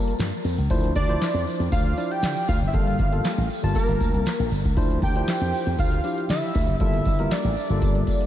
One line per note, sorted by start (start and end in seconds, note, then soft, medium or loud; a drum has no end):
0.00 0.14 G3 medium
0.00 0.14 A#3 medium
0.00 0.14 F4 medium
0.00 0.15 A#4 medium
0.00 0.14 A5 medium
0.08 closed hi-hat medium
0.19 0.30 G2 loud
0.19 snare loud
0.19 clap medium
0.19 closed hi-hat medium
0.19 tambourine medium
0.33 closed hi-hat medium
0.45 0.56 F2 loud
0.45 open hi-hat medium
0.45 tambourine medium
0.58 0.68 C#2 medium
0.58 closed hi-hat soft
0.70 0.91 D2 loud
0.70 0.92 F3 medium
0.70 0.92 D4 medium
0.70 0.92 E4 medium
0.70 0.92 C5 medium
0.70 kick loud
0.70 closed hi-hat medium
0.70 tambourine soft
0.84 closed hi-hat medium
0.95 1.16 D2 medium
0.95 1.43 D5 loud
0.95 kick loud
0.95 closed hi-hat medium
1.09 1.60 F3 medium
1.09 1.60 D4 medium
1.09 1.60 E4 medium
1.09 1.60 C5 medium
1.09 closed hi-hat medium
1.21 snare loud
1.21 clap medium
1.21 closed hi-hat medium
1.21 tambourine medium
1.34 1.44 F2 medium
1.34 closed hi-hat medium
1.47 open hi-hat medium
1.47 tambourine soft
1.60 1.70 F2 medium
1.60 closed hi-hat medium
1.72 1.93 D2 medium
1.72 2.13 F5 loud
1.72 kick loud
1.72 closed hi-hat loud
1.72 tambourine medium
1.86 closed hi-hat soft
1.97 2.41 F3 medium
1.97 2.41 D4 medium
1.97 2.41 E4 medium
1.97 2.41 D5 medium
1.97 closed hi-hat medium
1.97 tambourine medium
2.11 2.48 G5 loud
2.11 closed hi-hat medium
2.22 2.34 D3 loud
2.22 snare loud
2.22 clap medium
2.22 closed hi-hat medium
2.22 tambourine loud
2.37 closed hi-hat medium
2.48 2.59 D2 medium
2.48 2.57 F5 medium
2.48 kick medium
2.48 open hi-hat medium
2.48 tambourine medium
2.62 2.71 F#1 medium
2.62 closed hi-hat soft
2.67 2.76 E5 medium
2.73 2.94 G1 loud
2.73 2.95 G3 medium
2.73 2.96 A#3 medium
2.73 2.96 F4 medium
2.73 2.96 A4 medium
2.73 3.50 F5 medium
2.73 kick loud
2.73 closed hi-hat medium
2.87 closed hi-hat soft
2.99 3.20 G1 loud
2.99 kick medium
2.99 closed hi-hat medium
3.12 3.41 G3 medium
3.12 3.41 A#3 medium
3.12 3.41 F4 medium
3.12 3.41 A4 medium
3.12 closed hi-hat medium
3.24 snare loud
3.24 clap medium
3.24 closed hi-hat medium
3.24 tambourine medium
3.38 3.48 A1 medium
3.38 closed hi-hat soft
3.50 open hi-hat medium
3.50 tambourine soft
3.63 3.73 G1 medium
3.63 4.21 G3 medium
3.63 4.21 A#3 medium
3.63 4.21 F4 medium
3.63 4.21 A5 medium
3.63 closed hi-hat medium
3.75 4.48 A#4 loud
3.75 kick loud
3.75 closed hi-hat loud
3.75 tambourine medium
3.88 3.98 G1 medium
3.88 closed hi-hat soft
4.00 4.12 D2 medium
4.00 kick medium
4.00 closed hi-hat medium
4.00 tambourine medium
4.14 4.24 C2 medium
4.14 closed hi-hat medium
4.26 snare loud
4.26 clap medium
4.26 closed hi-hat medium
4.26 tambourine medium
4.39 4.49 A#1 medium
4.39 closed hi-hat medium
4.51 4.62 G1 medium
4.51 open hi-hat medium
4.51 tambourine medium
4.65 4.75 C#2 loud
4.65 kick medium
4.65 closed hi-hat soft
4.77 4.98 D2 loud
4.77 4.99 F3 medium
4.77 4.99 D4 medium
4.77 4.99 E4 medium
4.77 4.99 C5 medium
4.77 kick loud
4.77 closed hi-hat medium
4.77 tambourine soft
4.90 closed hi-hat soft
5.02 5.23 D2 loud
5.02 5.75 G5 loud
5.02 kick loud
5.02 closed hi-hat medium
5.02 tambourine soft
5.16 5.66 F3 medium
5.16 5.67 D4 medium
5.16 5.67 E4 medium
5.16 5.67 C5 medium
5.16 closed hi-hat medium
5.28 snare loud
5.28 clap medium
5.28 closed hi-hat medium
5.28 tambourine medium
5.41 5.51 F2 medium
5.41 closed hi-hat soft
5.53 open hi-hat medium
5.53 tambourine medium
5.67 5.76 F2 medium
5.67 closed hi-hat medium
5.79 5.99 D2 medium
5.79 6.26 F5 loud
5.79 kick loud
5.79 closed hi-hat loud
5.79 tambourine medium
5.92 closed hi-hat soft
6.04 6.48 F3 medium
6.04 6.48 D4 medium
6.04 6.48 E4 medium
6.04 6.48 G4 medium
6.04 closed hi-hat medium
6.04 tambourine medium
6.18 closed hi-hat medium
6.29 6.40 D3 loud
6.29 6.77 E5 loud
6.29 snare loud
6.29 clap loud
6.29 closed hi-hat medium
6.29 tambourine loud
6.43 closed hi-hat medium
6.55 6.66 D2 medium
6.55 kick medium
6.55 open hi-hat medium
6.55 tambourine medium
6.68 6.78 F#1 medium
6.68 closed hi-hat soft
6.80 7.01 G1 loud
6.80 7.02 G3 medium
6.80 7.02 A#3 medium
6.80 7.03 F4 medium
6.80 7.03 A4 medium
6.80 7.33 E5 medium
6.80 kick loud
6.80 closed hi-hat medium
6.94 closed hi-hat soft
7.05 7.26 G1 loud
7.05 kick loud
7.05 closed hi-hat medium
7.05 tambourine soft
7.19 7.48 G3 medium
7.19 7.48 A#3 medium
7.19 7.48 F4 medium
7.19 7.48 A#4 medium
7.19 closed hi-hat medium
7.31 8.27 D5 medium
7.31 snare loud
7.31 clap medium
7.31 closed hi-hat medium
7.31 tambourine medium
7.44 7.54 A1 medium
7.44 closed hi-hat soft
7.56 open hi-hat medium
7.56 tambourine soft
7.70 7.80 G1 medium
7.70 8.27 G3 medium
7.70 8.27 A#3 medium
7.70 8.27 F4 medium
7.70 8.27 A4 medium
7.70 closed hi-hat soft
7.82 8.03 G1 medium
7.82 kick loud
7.82 closed hi-hat loud
7.82 tambourine medium
7.95 closed hi-hat soft
8.07 kick medium
8.07 closed hi-hat medium
8.07 tambourine medium
8.21 closed hi-hat medium